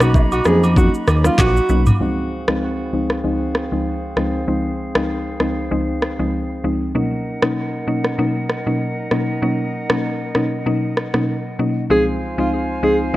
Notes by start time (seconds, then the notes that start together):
Already playing: B1 F#4 D#5 A#5 B5
0.01 F#3 A#3 C#4 D#4 F#4, cross-stick, high agogo, shaker
0.15 kick, low woodblock, shaker
0.32 F#4, high agogo, shaker
0.45 F2 F#3 A#3 C#4 D#4 G#4, cross-stick, shaker
0.63 high agogo, shaker
0.76 F#3 A#3 C#4 D#4 F#4, kick, shaker
0.94 shaker
1.07 D#2, cross-stick, high agogo, shaker
1.24 F#3 A#3 C#4 D#4 F4, cross-stick, shaker
1.38 A#1 F#4, kick, clap, high agogo, shaker
1.57 shaker
1.69 B1 F#3 A#3 C#4 D#4, shaker
1.86 mid tom, high agogo, shaker
2.00 C#2 F3 G#3 C4 D#4 G#4 C5 F5
2.48 C#2 F3 G#3 C4 D#4, cross-stick
2.93 C#2 F3 G#3 C4 D#4
3.10 cross-stick
3.24 C#2 F3 G#3 C4 D#4
3.55 cross-stick
3.72 C#2 F3 G#3 C4 D#4
4.17 C#2 F3 G#3 C4 D#4, cross-stick
4.48 C#2 F3 G#3 C4 D#4
4.95 C#2 F3 G#3 C4 D#4, cross-stick
5.40 C#2 F3 G#3 C4 D#4, cross-stick
5.71 C#2 F3 G#3 C4 D#4
6.02 cross-stick
6.19 C#2 F3 G#3 C4 D#4
6.64 C#2 F3 G#3 C4 D#4
6.95 B2 F#3 A#3 C#4 D#4 A#4 D#5 F#5
7.42 B2 F#3 A#3 C#4 D#4, cross-stick
7.87 B2 F#3 A#3 C#4 D#4
8.05 cross-stick
8.18 B2 F#3 A#3 C#4 D#4
8.50 cross-stick
8.66 B2 F#3 A#3 C#4 D#4
9.11 B2 F#3 A#3 C#4 D#4, cross-stick
9.42 B2 F#3 A#3 C#4 D#4
9.90 B2 F#3 A#3 C#4 D#4, cross-stick
10.35 B2 F#3 A#3 C#4 D#4, cross-stick
10.66 B2 F#3 A#3 C#4 D#4
10.97 cross-stick
11.14 B2 F#3 A#3 C#4 D#4, cross-stick
11.59 B2 F#3 A#3 C#4 D#4
11.90 C#2 F3 G#3 C4 D#4 F4 G#4 C5 F5 G#5
12.38 C#2 F3 G#3 C4 D#4 F4
12.82 C#2 F3 G#3 C4 D#4 G#4
13.14 C#2